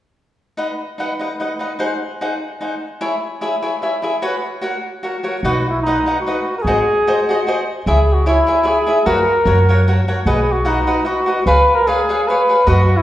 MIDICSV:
0, 0, Header, 1, 4, 480
1, 0, Start_track
1, 0, Key_signature, 5, "major"
1, 0, Tempo, 403226
1, 692, Time_signature, 3, 2, 24, 8
1, 15501, End_track
2, 0, Start_track
2, 0, Title_t, "Cavaquinho"
2, 0, Program_c, 0, 24
2, 682, Note_on_c, 0, 63, 51
2, 684, Note_on_c, 0, 71, 52
2, 693, Note_on_c, 0, 75, 55
2, 698, Note_on_c, 0, 78, 50
2, 840, Note_off_c, 0, 63, 0
2, 841, Note_off_c, 0, 71, 0
2, 846, Note_off_c, 0, 75, 0
2, 848, Note_off_c, 0, 78, 0
2, 1168, Note_on_c, 0, 63, 38
2, 1185, Note_on_c, 0, 71, 47
2, 1188, Note_on_c, 0, 75, 44
2, 1192, Note_on_c, 0, 78, 50
2, 1325, Note_off_c, 0, 63, 0
2, 1334, Note_off_c, 0, 71, 0
2, 1335, Note_off_c, 0, 75, 0
2, 1338, Note_off_c, 0, 78, 0
2, 1421, Note_on_c, 0, 63, 37
2, 1435, Note_on_c, 0, 75, 35
2, 1438, Note_on_c, 0, 71, 39
2, 1444, Note_on_c, 0, 78, 38
2, 1563, Note_off_c, 0, 63, 0
2, 1570, Note_off_c, 0, 75, 0
2, 1572, Note_off_c, 0, 71, 0
2, 1575, Note_off_c, 0, 78, 0
2, 1663, Note_on_c, 0, 63, 36
2, 1671, Note_on_c, 0, 71, 40
2, 1679, Note_on_c, 0, 75, 37
2, 1679, Note_on_c, 0, 78, 41
2, 1813, Note_off_c, 0, 63, 0
2, 1817, Note_off_c, 0, 71, 0
2, 1821, Note_off_c, 0, 75, 0
2, 1821, Note_off_c, 0, 78, 0
2, 1896, Note_on_c, 0, 63, 35
2, 1907, Note_on_c, 0, 71, 41
2, 1911, Note_on_c, 0, 75, 31
2, 1914, Note_on_c, 0, 78, 40
2, 2042, Note_off_c, 0, 63, 0
2, 2047, Note_off_c, 0, 71, 0
2, 2049, Note_off_c, 0, 75, 0
2, 2050, Note_off_c, 0, 78, 0
2, 2128, Note_on_c, 0, 63, 53
2, 2140, Note_on_c, 0, 72, 63
2, 2141, Note_on_c, 0, 78, 56
2, 2143, Note_on_c, 0, 68, 49
2, 2287, Note_off_c, 0, 63, 0
2, 2293, Note_off_c, 0, 72, 0
2, 2293, Note_off_c, 0, 78, 0
2, 2295, Note_off_c, 0, 68, 0
2, 2632, Note_on_c, 0, 63, 46
2, 2635, Note_on_c, 0, 68, 49
2, 2642, Note_on_c, 0, 72, 50
2, 2645, Note_on_c, 0, 78, 55
2, 2780, Note_off_c, 0, 63, 0
2, 2781, Note_off_c, 0, 68, 0
2, 2785, Note_off_c, 0, 72, 0
2, 2786, Note_off_c, 0, 78, 0
2, 3102, Note_on_c, 0, 63, 39
2, 3109, Note_on_c, 0, 72, 44
2, 3111, Note_on_c, 0, 68, 39
2, 3125, Note_on_c, 0, 78, 39
2, 3256, Note_off_c, 0, 63, 0
2, 3260, Note_off_c, 0, 68, 0
2, 3260, Note_off_c, 0, 72, 0
2, 3267, Note_off_c, 0, 78, 0
2, 3580, Note_on_c, 0, 64, 52
2, 3582, Note_on_c, 0, 68, 65
2, 3586, Note_on_c, 0, 73, 57
2, 3594, Note_on_c, 0, 76, 60
2, 3733, Note_off_c, 0, 64, 0
2, 3734, Note_off_c, 0, 68, 0
2, 3736, Note_off_c, 0, 73, 0
2, 3740, Note_off_c, 0, 76, 0
2, 4061, Note_on_c, 0, 64, 47
2, 4067, Note_on_c, 0, 68, 51
2, 4070, Note_on_c, 0, 73, 53
2, 4083, Note_on_c, 0, 76, 56
2, 4214, Note_off_c, 0, 64, 0
2, 4217, Note_off_c, 0, 68, 0
2, 4218, Note_off_c, 0, 73, 0
2, 4225, Note_off_c, 0, 76, 0
2, 4313, Note_on_c, 0, 64, 40
2, 4315, Note_on_c, 0, 68, 48
2, 4316, Note_on_c, 0, 73, 44
2, 4330, Note_on_c, 0, 76, 46
2, 4451, Note_off_c, 0, 64, 0
2, 4451, Note_off_c, 0, 68, 0
2, 4452, Note_off_c, 0, 73, 0
2, 4459, Note_off_c, 0, 76, 0
2, 4546, Note_on_c, 0, 64, 38
2, 4556, Note_on_c, 0, 76, 42
2, 4559, Note_on_c, 0, 68, 43
2, 4559, Note_on_c, 0, 73, 42
2, 4696, Note_off_c, 0, 64, 0
2, 4701, Note_off_c, 0, 76, 0
2, 4702, Note_off_c, 0, 68, 0
2, 4702, Note_off_c, 0, 73, 0
2, 4788, Note_on_c, 0, 64, 41
2, 4801, Note_on_c, 0, 68, 41
2, 4802, Note_on_c, 0, 73, 40
2, 4810, Note_on_c, 0, 76, 44
2, 4927, Note_off_c, 0, 64, 0
2, 4933, Note_off_c, 0, 68, 0
2, 4934, Note_off_c, 0, 73, 0
2, 4938, Note_off_c, 0, 76, 0
2, 5023, Note_on_c, 0, 66, 52
2, 5029, Note_on_c, 0, 73, 68
2, 5031, Note_on_c, 0, 71, 58
2, 5034, Note_on_c, 0, 78, 57
2, 5172, Note_off_c, 0, 66, 0
2, 5175, Note_off_c, 0, 73, 0
2, 5176, Note_off_c, 0, 71, 0
2, 5177, Note_off_c, 0, 78, 0
2, 5493, Note_on_c, 0, 66, 50
2, 5504, Note_on_c, 0, 70, 48
2, 5504, Note_on_c, 0, 73, 60
2, 5520, Note_on_c, 0, 78, 62
2, 5648, Note_off_c, 0, 66, 0
2, 5653, Note_off_c, 0, 70, 0
2, 5653, Note_off_c, 0, 73, 0
2, 5661, Note_off_c, 0, 78, 0
2, 5987, Note_on_c, 0, 66, 39
2, 5999, Note_on_c, 0, 70, 43
2, 5999, Note_on_c, 0, 73, 42
2, 6002, Note_on_c, 0, 78, 47
2, 6136, Note_off_c, 0, 66, 0
2, 6143, Note_off_c, 0, 70, 0
2, 6143, Note_off_c, 0, 73, 0
2, 6144, Note_off_c, 0, 78, 0
2, 6229, Note_on_c, 0, 66, 40
2, 6237, Note_on_c, 0, 73, 43
2, 6243, Note_on_c, 0, 70, 44
2, 6243, Note_on_c, 0, 78, 50
2, 6369, Note_off_c, 0, 66, 0
2, 6373, Note_off_c, 0, 73, 0
2, 6376, Note_off_c, 0, 70, 0
2, 6376, Note_off_c, 0, 78, 0
2, 6481, Note_on_c, 0, 63, 54
2, 6487, Note_on_c, 0, 71, 63
2, 6488, Note_on_c, 0, 75, 53
2, 6492, Note_on_c, 0, 78, 61
2, 6624, Note_off_c, 0, 63, 0
2, 6627, Note_off_c, 0, 71, 0
2, 6628, Note_off_c, 0, 75, 0
2, 6629, Note_off_c, 0, 78, 0
2, 6980, Note_on_c, 0, 71, 56
2, 6986, Note_on_c, 0, 63, 45
2, 6986, Note_on_c, 0, 75, 58
2, 7000, Note_on_c, 0, 78, 52
2, 7115, Note_off_c, 0, 71, 0
2, 7117, Note_off_c, 0, 63, 0
2, 7117, Note_off_c, 0, 75, 0
2, 7125, Note_off_c, 0, 78, 0
2, 7216, Note_on_c, 0, 63, 41
2, 7228, Note_on_c, 0, 71, 45
2, 7233, Note_on_c, 0, 78, 47
2, 7235, Note_on_c, 0, 75, 39
2, 7344, Note_off_c, 0, 63, 0
2, 7350, Note_off_c, 0, 71, 0
2, 7353, Note_off_c, 0, 78, 0
2, 7354, Note_off_c, 0, 75, 0
2, 7458, Note_on_c, 0, 63, 38
2, 7468, Note_on_c, 0, 71, 44
2, 7469, Note_on_c, 0, 75, 49
2, 7481, Note_on_c, 0, 78, 42
2, 7594, Note_off_c, 0, 63, 0
2, 7599, Note_off_c, 0, 71, 0
2, 7600, Note_off_c, 0, 75, 0
2, 7606, Note_off_c, 0, 78, 0
2, 7940, Note_on_c, 0, 66, 49
2, 7945, Note_on_c, 0, 75, 62
2, 7946, Note_on_c, 0, 68, 57
2, 7952, Note_on_c, 0, 72, 59
2, 8075, Note_off_c, 0, 66, 0
2, 8078, Note_off_c, 0, 68, 0
2, 8078, Note_off_c, 0, 75, 0
2, 8081, Note_off_c, 0, 72, 0
2, 8419, Note_on_c, 0, 66, 51
2, 8426, Note_on_c, 0, 68, 50
2, 8426, Note_on_c, 0, 75, 66
2, 8431, Note_on_c, 0, 72, 64
2, 8554, Note_off_c, 0, 66, 0
2, 8557, Note_off_c, 0, 68, 0
2, 8558, Note_off_c, 0, 75, 0
2, 8560, Note_off_c, 0, 72, 0
2, 8676, Note_on_c, 0, 66, 56
2, 8690, Note_on_c, 0, 68, 50
2, 8699, Note_on_c, 0, 72, 56
2, 8699, Note_on_c, 0, 75, 61
2, 8793, Note_off_c, 0, 66, 0
2, 8800, Note_off_c, 0, 68, 0
2, 8805, Note_off_c, 0, 72, 0
2, 8805, Note_off_c, 0, 75, 0
2, 8890, Note_on_c, 0, 66, 44
2, 8905, Note_on_c, 0, 68, 50
2, 8907, Note_on_c, 0, 72, 52
2, 8910, Note_on_c, 0, 75, 51
2, 9029, Note_off_c, 0, 66, 0
2, 9036, Note_off_c, 0, 68, 0
2, 9037, Note_off_c, 0, 72, 0
2, 9038, Note_off_c, 0, 75, 0
2, 9368, Note_on_c, 0, 64, 60
2, 9371, Note_on_c, 0, 68, 61
2, 9378, Note_on_c, 0, 76, 66
2, 9382, Note_on_c, 0, 73, 60
2, 9505, Note_off_c, 0, 64, 0
2, 9507, Note_off_c, 0, 68, 0
2, 9510, Note_off_c, 0, 76, 0
2, 9512, Note_off_c, 0, 73, 0
2, 9834, Note_on_c, 0, 64, 58
2, 9842, Note_on_c, 0, 68, 61
2, 9842, Note_on_c, 0, 73, 59
2, 9850, Note_on_c, 0, 76, 54
2, 9976, Note_off_c, 0, 64, 0
2, 9980, Note_off_c, 0, 68, 0
2, 9980, Note_off_c, 0, 73, 0
2, 9984, Note_off_c, 0, 76, 0
2, 10080, Note_on_c, 0, 64, 44
2, 10093, Note_on_c, 0, 73, 44
2, 10094, Note_on_c, 0, 68, 49
2, 10100, Note_on_c, 0, 76, 52
2, 10209, Note_off_c, 0, 64, 0
2, 10216, Note_off_c, 0, 68, 0
2, 10216, Note_off_c, 0, 73, 0
2, 10220, Note_off_c, 0, 76, 0
2, 10277, Note_on_c, 0, 64, 48
2, 10291, Note_on_c, 0, 68, 51
2, 10297, Note_on_c, 0, 73, 49
2, 10301, Note_on_c, 0, 76, 45
2, 10436, Note_off_c, 0, 64, 0
2, 10443, Note_off_c, 0, 68, 0
2, 10446, Note_off_c, 0, 73, 0
2, 10448, Note_off_c, 0, 76, 0
2, 10553, Note_on_c, 0, 68, 49
2, 10557, Note_on_c, 0, 64, 40
2, 10564, Note_on_c, 0, 73, 47
2, 10573, Note_on_c, 0, 76, 43
2, 10685, Note_off_c, 0, 68, 0
2, 10687, Note_off_c, 0, 64, 0
2, 10690, Note_off_c, 0, 73, 0
2, 10695, Note_off_c, 0, 76, 0
2, 10785, Note_on_c, 0, 66, 64
2, 10788, Note_on_c, 0, 71, 68
2, 10792, Note_on_c, 0, 78, 65
2, 10794, Note_on_c, 0, 73, 57
2, 10929, Note_off_c, 0, 66, 0
2, 10931, Note_off_c, 0, 71, 0
2, 10932, Note_off_c, 0, 78, 0
2, 10933, Note_off_c, 0, 73, 0
2, 11253, Note_on_c, 0, 66, 48
2, 11267, Note_on_c, 0, 70, 48
2, 11271, Note_on_c, 0, 73, 60
2, 11276, Note_on_c, 0, 78, 53
2, 11402, Note_off_c, 0, 66, 0
2, 11410, Note_off_c, 0, 70, 0
2, 11412, Note_off_c, 0, 73, 0
2, 11414, Note_off_c, 0, 78, 0
2, 11531, Note_on_c, 0, 66, 50
2, 11537, Note_on_c, 0, 70, 55
2, 11546, Note_on_c, 0, 73, 53
2, 11554, Note_on_c, 0, 78, 50
2, 11653, Note_off_c, 0, 66, 0
2, 11657, Note_off_c, 0, 70, 0
2, 11661, Note_off_c, 0, 73, 0
2, 11665, Note_off_c, 0, 78, 0
2, 11756, Note_on_c, 0, 66, 44
2, 11761, Note_on_c, 0, 70, 52
2, 11774, Note_on_c, 0, 73, 48
2, 11774, Note_on_c, 0, 78, 52
2, 11896, Note_off_c, 0, 66, 0
2, 11898, Note_off_c, 0, 70, 0
2, 11905, Note_off_c, 0, 73, 0
2, 11905, Note_off_c, 0, 78, 0
2, 11999, Note_on_c, 0, 66, 47
2, 12000, Note_on_c, 0, 70, 48
2, 12004, Note_on_c, 0, 73, 57
2, 12004, Note_on_c, 0, 78, 50
2, 12129, Note_off_c, 0, 66, 0
2, 12130, Note_off_c, 0, 70, 0
2, 12131, Note_off_c, 0, 73, 0
2, 12132, Note_off_c, 0, 78, 0
2, 12218, Note_on_c, 0, 66, 54
2, 12220, Note_on_c, 0, 78, 55
2, 12223, Note_on_c, 0, 71, 62
2, 12224, Note_on_c, 0, 75, 58
2, 12368, Note_off_c, 0, 66, 0
2, 12369, Note_off_c, 0, 78, 0
2, 12371, Note_off_c, 0, 71, 0
2, 12371, Note_off_c, 0, 75, 0
2, 12674, Note_on_c, 0, 66, 58
2, 12683, Note_on_c, 0, 71, 59
2, 12691, Note_on_c, 0, 75, 58
2, 12691, Note_on_c, 0, 78, 63
2, 12838, Note_off_c, 0, 66, 0
2, 12842, Note_off_c, 0, 71, 0
2, 12846, Note_off_c, 0, 75, 0
2, 12846, Note_off_c, 0, 78, 0
2, 12938, Note_on_c, 0, 66, 44
2, 12943, Note_on_c, 0, 71, 44
2, 12947, Note_on_c, 0, 75, 46
2, 12954, Note_on_c, 0, 78, 46
2, 13081, Note_off_c, 0, 66, 0
2, 13083, Note_off_c, 0, 71, 0
2, 13085, Note_off_c, 0, 75, 0
2, 13089, Note_off_c, 0, 78, 0
2, 13150, Note_on_c, 0, 66, 44
2, 13166, Note_on_c, 0, 71, 47
2, 13167, Note_on_c, 0, 75, 50
2, 13169, Note_on_c, 0, 78, 38
2, 13315, Note_off_c, 0, 66, 0
2, 13323, Note_off_c, 0, 71, 0
2, 13324, Note_off_c, 0, 75, 0
2, 13324, Note_off_c, 0, 78, 0
2, 13404, Note_on_c, 0, 66, 45
2, 13421, Note_on_c, 0, 71, 44
2, 13422, Note_on_c, 0, 75, 41
2, 13427, Note_on_c, 0, 78, 43
2, 13553, Note_off_c, 0, 66, 0
2, 13561, Note_off_c, 0, 71, 0
2, 13562, Note_off_c, 0, 75, 0
2, 13564, Note_off_c, 0, 78, 0
2, 13650, Note_on_c, 0, 68, 62
2, 13653, Note_on_c, 0, 73, 58
2, 13659, Note_on_c, 0, 77, 67
2, 13668, Note_on_c, 0, 71, 62
2, 13804, Note_off_c, 0, 68, 0
2, 13806, Note_off_c, 0, 73, 0
2, 13809, Note_off_c, 0, 77, 0
2, 13813, Note_off_c, 0, 71, 0
2, 14131, Note_on_c, 0, 68, 60
2, 14136, Note_on_c, 0, 73, 53
2, 14146, Note_on_c, 0, 71, 57
2, 14151, Note_on_c, 0, 77, 59
2, 14284, Note_off_c, 0, 68, 0
2, 14286, Note_off_c, 0, 73, 0
2, 14291, Note_off_c, 0, 71, 0
2, 14294, Note_off_c, 0, 77, 0
2, 14391, Note_on_c, 0, 68, 51
2, 14400, Note_on_c, 0, 71, 47
2, 14400, Note_on_c, 0, 73, 50
2, 14414, Note_on_c, 0, 77, 54
2, 14523, Note_off_c, 0, 68, 0
2, 14528, Note_off_c, 0, 71, 0
2, 14528, Note_off_c, 0, 73, 0
2, 14535, Note_off_c, 0, 77, 0
2, 14624, Note_on_c, 0, 68, 39
2, 14638, Note_on_c, 0, 71, 42
2, 14641, Note_on_c, 0, 73, 50
2, 14646, Note_on_c, 0, 77, 50
2, 14767, Note_off_c, 0, 68, 0
2, 14775, Note_off_c, 0, 71, 0
2, 14776, Note_off_c, 0, 73, 0
2, 14778, Note_off_c, 0, 77, 0
2, 14868, Note_on_c, 0, 68, 41
2, 14875, Note_on_c, 0, 73, 45
2, 14884, Note_on_c, 0, 71, 42
2, 14890, Note_on_c, 0, 77, 42
2, 15000, Note_off_c, 0, 68, 0
2, 15003, Note_off_c, 0, 73, 0
2, 15008, Note_off_c, 0, 71, 0
2, 15011, Note_off_c, 0, 77, 0
2, 15078, Note_on_c, 0, 71, 67
2, 15081, Note_on_c, 0, 75, 69
2, 15086, Note_on_c, 0, 66, 57
2, 15094, Note_on_c, 0, 78, 63
2, 15233, Note_off_c, 0, 71, 0
2, 15234, Note_off_c, 0, 75, 0
2, 15237, Note_off_c, 0, 66, 0
2, 15241, Note_off_c, 0, 78, 0
2, 15501, End_track
3, 0, Start_track
3, 0, Title_t, "Trumpet"
3, 0, Program_c, 1, 56
3, 6483, Note_on_c, 1, 66, 72
3, 6769, Note_off_c, 1, 66, 0
3, 6776, Note_on_c, 1, 64, 60
3, 6926, Note_off_c, 1, 64, 0
3, 6933, Note_on_c, 1, 63, 72
3, 7376, Note_off_c, 1, 63, 0
3, 7383, Note_on_c, 1, 66, 68
3, 7777, Note_off_c, 1, 66, 0
3, 7826, Note_on_c, 1, 70, 56
3, 7880, Note_on_c, 1, 68, 91
3, 7898, Note_off_c, 1, 70, 0
3, 8851, Note_off_c, 1, 68, 0
3, 9377, Note_on_c, 1, 68, 73
3, 9678, Note_on_c, 1, 66, 62
3, 9695, Note_off_c, 1, 68, 0
3, 9827, Note_off_c, 1, 66, 0
3, 9852, Note_on_c, 1, 64, 78
3, 10332, Note_on_c, 1, 68, 77
3, 10350, Note_off_c, 1, 64, 0
3, 10786, Note_on_c, 1, 70, 98
3, 10804, Note_off_c, 1, 68, 0
3, 11738, Note_off_c, 1, 70, 0
3, 12224, Note_on_c, 1, 68, 79
3, 12520, Note_on_c, 1, 66, 70
3, 12538, Note_off_c, 1, 68, 0
3, 12692, Note_on_c, 1, 63, 76
3, 12710, Note_off_c, 1, 66, 0
3, 13164, Note_on_c, 1, 66, 63
3, 13182, Note_off_c, 1, 63, 0
3, 13633, Note_off_c, 1, 66, 0
3, 13640, Note_on_c, 1, 71, 85
3, 13983, Note_on_c, 1, 70, 77
3, 14001, Note_off_c, 1, 71, 0
3, 14134, Note_on_c, 1, 68, 78
3, 14152, Note_off_c, 1, 70, 0
3, 14617, Note_on_c, 1, 71, 73
3, 14635, Note_off_c, 1, 68, 0
3, 15096, Note_on_c, 1, 66, 87
3, 15114, Note_off_c, 1, 71, 0
3, 15437, Note_on_c, 1, 64, 80
3, 15455, Note_off_c, 1, 66, 0
3, 15501, Note_off_c, 1, 64, 0
3, 15501, End_track
4, 0, Start_track
4, 0, Title_t, "Upright bass"
4, 0, Program_c, 2, 32
4, 6463, Note_on_c, 2, 35, 57
4, 7090, Note_off_c, 2, 35, 0
4, 7910, Note_on_c, 2, 32, 65
4, 8073, Note_off_c, 2, 32, 0
4, 9360, Note_on_c, 2, 37, 71
4, 9973, Note_off_c, 2, 37, 0
4, 10788, Note_on_c, 2, 42, 69
4, 10946, Note_off_c, 2, 42, 0
4, 11255, Note_on_c, 2, 42, 85
4, 11880, Note_off_c, 2, 42, 0
4, 12208, Note_on_c, 2, 35, 60
4, 12837, Note_off_c, 2, 35, 0
4, 13641, Note_on_c, 2, 37, 65
4, 13809, Note_off_c, 2, 37, 0
4, 15084, Note_on_c, 2, 42, 74
4, 15395, Note_off_c, 2, 42, 0
4, 15501, End_track
0, 0, End_of_file